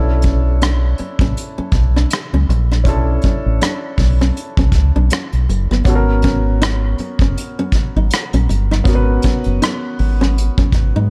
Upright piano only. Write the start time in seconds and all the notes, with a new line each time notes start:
Already playing: C#4 D4 E4 A4
2.84 C#4 D4 E4
2.88 A4
5.84 B3 C#4 F#4
5.89 A4
5.95 A#4
8.84 B3 C#4 F#4
8.89 A#4
8.95 B4